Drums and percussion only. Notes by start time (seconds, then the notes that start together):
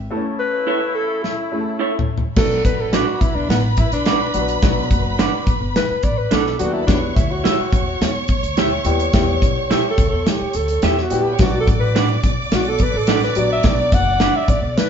1.24 snare
1.99 floor tom
2.18 floor tom
2.36 kick, snare, crash
2.65 kick, closed hi-hat
2.93 snare, closed hi-hat
3.21 kick, closed hi-hat
3.50 snare, closed hi-hat
3.77 kick, closed hi-hat
3.92 closed hi-hat
4.05 snare, closed hi-hat
4.34 closed hi-hat
4.48 closed hi-hat
4.62 kick, snare, closed hi-hat
4.91 kick, closed hi-hat
5.19 snare, closed hi-hat
5.47 kick, closed hi-hat
5.76 snare, closed hi-hat
6.03 kick, closed hi-hat
6.31 snare, closed hi-hat
6.46 snare
6.59 closed hi-hat
6.88 kick, snare, closed hi-hat
7.17 kick, closed hi-hat
7.45 snare, closed hi-hat
7.73 kick, closed hi-hat
8.02 snare, closed hi-hat
8.28 kick, closed hi-hat
8.43 closed hi-hat
8.57 snare, closed hi-hat
8.85 closed hi-hat
8.99 closed hi-hat
9.13 kick, snare, closed hi-hat
9.42 kick, closed hi-hat
9.71 snare, closed hi-hat
9.98 kick, closed hi-hat
10.26 snare, closed hi-hat
10.53 closed hi-hat
10.68 closed hi-hat
10.82 snare, closed hi-hat
10.98 snare
11.10 closed hi-hat
11.39 kick, snare, closed hi-hat
11.67 kick, closed hi-hat
11.96 snare, closed hi-hat
12.24 kick, closed hi-hat
12.52 snare, closed hi-hat
12.78 kick, closed hi-hat
13.07 snare, closed hi-hat
13.23 snare
13.35 closed hi-hat
13.63 kick, snare, closed hi-hat
13.92 kick, closed hi-hat
14.20 snare, closed hi-hat
14.48 kick, closed hi-hat
14.78 snare, closed hi-hat